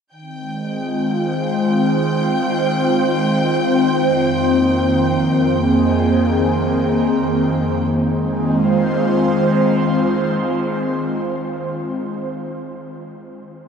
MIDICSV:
0, 0, Header, 1, 3, 480
1, 0, Start_track
1, 0, Key_signature, -4, "minor"
1, 0, Tempo, 956938
1, 50, Time_signature, 4, 2, 24, 8
1, 2929, Tempo, 967742
1, 6818, End_track
2, 0, Start_track
2, 0, Title_t, "Violin section"
2, 0, Program_c, 0, 48
2, 64, Note_on_c, 0, 91, 61
2, 68, Note_on_c, 0, 79, 65
2, 3916, Note_off_c, 0, 91, 0
2, 3918, Note_off_c, 0, 79, 0
2, 6818, End_track
3, 0, Start_track
3, 0, Title_t, "Analog synth pad"
3, 0, Program_c, 1, 89
3, 56, Note_on_c, 1, 51, 78
3, 103, Note_on_c, 1, 60, 60
3, 194, Note_on_c, 1, 56, 69
3, 333, Note_on_c, 1, 65, 74
3, 571, Note_on_c, 1, 72, 67
3, 1968, Note_on_c, 1, 41, 65
3, 1970, Note_off_c, 1, 56, 0
3, 2185, Note_on_c, 1, 58, 68
3, 2666, Note_on_c, 1, 68, 60
3, 2736, Note_off_c, 1, 65, 0
3, 3892, Note_off_c, 1, 51, 0
3, 3893, Note_off_c, 1, 72, 0
3, 3895, Note_off_c, 1, 58, 0
3, 3896, Note_off_c, 1, 68, 0
3, 3897, Note_off_c, 1, 41, 0
3, 3898, Note_on_c, 1, 51, 67
3, 3901, Note_off_c, 1, 60, 0
3, 3966, Note_on_c, 1, 56, 68
3, 4045, Note_on_c, 1, 60, 65
3, 4123, Note_on_c, 1, 65, 62
3, 4187, Note_on_c, 1, 72, 63
3, 6012, Note_off_c, 1, 51, 0
3, 6079, Note_off_c, 1, 56, 0
3, 6158, Note_off_c, 1, 60, 0
3, 6178, Note_off_c, 1, 72, 0
3, 6182, Note_off_c, 1, 65, 0
3, 6818, End_track
0, 0, End_of_file